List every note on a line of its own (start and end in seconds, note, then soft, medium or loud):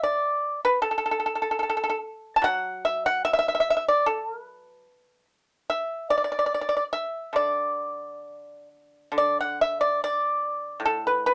0.03 0.59 D5 medium
0.65 0.81 B4 medium
0.82 0.89 A4 medium
0.91 0.97 A4 soft
0.98 1.04 A4 medium
1.06 1.10 A4 soft
1.11 1.18 A4 medium
1.20 1.25 A4 soft
1.26 1.32 A4 soft
1.35 1.41 A4 soft
1.42 1.48 A4 soft
1.51 1.56 A4 soft
1.59 1.62 A4 soft
1.59 1.68 A4 soft
1.70 1.76 A4 medium
1.77 1.82 A4 soft
1.84 1.88 A4 medium
1.90 1.97 A4 medium
2.36 2.44 A5 medium
2.42 4.87 F#3 medium
2.42 2.82 F#5 loud
2.85 3.04 E5 medium
3.06 3.24 F#5 loud
3.25 3.32 E5 loud
3.33 3.38 E5 medium
3.39 3.46 E5 medium
3.48 3.53 E5 medium
3.55 3.59 E5 medium
3.60 3.68 E5 medium
3.70 3.75 E5 medium
3.77 3.83 E5 medium
3.88 4.06 D5 medium
4.06 4.28 A4 medium
4.28 4.41 A#4 medium
4.41 5.25 B4 medium
5.70 6.08 E5 medium
6.10 6.16 D5 medium
6.18 6.23 D5 medium
6.24 6.31 D5 medium
6.32 6.38 D5 soft
6.39 6.45 D5 medium
6.46 6.53 D5 soft
6.54 6.60 D5 medium
6.61 6.68 D5 medium
6.69 6.75 D5 medium
6.77 6.83 D5 soft
6.93 7.32 E5 medium
7.33 9.10 D3 soft
7.33 8.68 D5 medium
9.12 11.34 D3 soft
9.18 9.37 D5 medium
9.41 9.59 F#5 medium
9.61 9.80 E5 medium
9.81 10.00 D5 medium
10.04 10.81 D5 medium
10.80 11.34 A2 medium
10.86 11.04 A4 medium
11.07 11.25 B4 medium
11.26 11.34 B4 medium